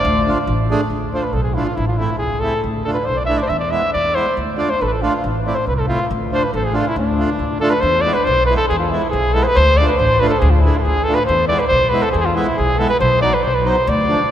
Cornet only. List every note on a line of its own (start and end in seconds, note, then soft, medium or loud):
0.00 0.32 D5 medium
1.14 1.25 C5 medium
1.23 1.35 B4 medium
1.33 1.43 A4 medium
1.43 1.56 G#4 medium
1.54 1.66 E4 medium
1.64 1.77 F4 medium
1.76 1.87 E4 medium
1.87 1.99 F4 medium
1.97 2.17 E4 medium
2.18 2.41 G#4 medium
2.40 2.63 A4 medium
2.84 2.93 A4 medium
2.94 3.05 B4 medium
3.03 3.17 C5 medium
3.03 3.07 D5 medium
3.16 3.25 D5 medium
3.26 3.40 E5 loud
3.38 3.46 C5 medium
3.38 3.44 D5 medium
3.45 3.51 D5 loud
3.49 3.58 E5 medium
3.59 3.72 D5 medium
3.71 3.92 E5 medium
3.93 4.16 D5 medium
4.15 4.37 C5 medium
4.58 4.71 D5 medium
4.70 4.82 C5 medium
4.80 4.87 A4 medium
4.80 4.84 B4 medium
4.85 4.91 B4 medium
4.93 5.03 A4 medium
5.02 5.24 F4 medium
5.46 5.56 D5 medium
5.55 5.66 C5 medium
5.67 5.75 B4 medium
5.76 5.87 A4 medium
5.88 6.08 F4 medium
6.32 6.45 C5 medium
6.44 6.53 B4 medium
6.54 6.67 A4 medium
6.65 6.78 G#4 medium
6.76 6.90 F4 medium
6.88 6.98 E4 medium
6.99 7.59 D4 medium
7.60 7.72 A4 loud
7.70 7.82 B4 medium
7.81 8.03 C5 loud
8.01 8.15 D5 loud
8.14 8.26 B4 medium
8.25 8.45 C5 loud
8.46 8.56 B4 loud
8.57 8.68 A4 loud
8.69 8.78 G#4 medium
8.79 8.92 F4 medium
8.90 9.10 E4 medium
9.10 9.35 G#4 loud
9.33 9.45 A4 loud
9.43 9.57 B4 loud
9.43 9.46 C5 medium
9.56 9.79 C5 loud
9.77 9.86 D5 loud
9.86 9.99 B4 medium
9.98 10.21 C5 loud
10.20 10.29 B4 loud
10.30 10.41 A4 medium
10.39 10.52 G#4 medium
10.51 10.62 F4 medium
10.60 10.79 E4 medium
10.78 10.84 A4 medium
10.83 11.05 G#4 medium
11.04 11.16 A4 medium
11.15 11.25 B4 medium
11.26 11.47 C5 medium
11.48 11.61 D5 loud
11.59 11.67 B4 medium
11.67 11.91 C5 loud
11.89 12.04 B4 medium
12.02 12.11 A4 loud
12.12 12.18 G#4 medium
12.17 12.27 G#4 loud
12.17 12.20 A4 medium
12.25 12.37 F4 medium
12.35 12.58 E4 medium
12.56 12.80 G#4 loud
12.78 12.89 A4 medium
12.89 12.99 B4 loud
13.00 13.21 C5 medium
13.21 13.35 D5 loud
13.34 13.45 B4 medium
13.44 13.56 C5 medium
13.55 13.69 B4 medium
13.68 13.90 C5 medium
13.88 14.31 D5 loud